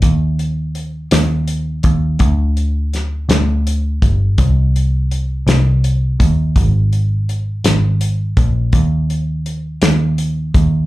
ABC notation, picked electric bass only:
X:1
M:6/8
L:1/8
Q:3/8=55
K:Ablyd
V:1 name="Picked electric bass" clef=bass
E,,3 E,,2 E,, | D,,3 D,,2 G,,, | C,,3 C,,2 E,, | A,,,3 A,,,2 B,,, |
E,,3 E,,2 E,, |]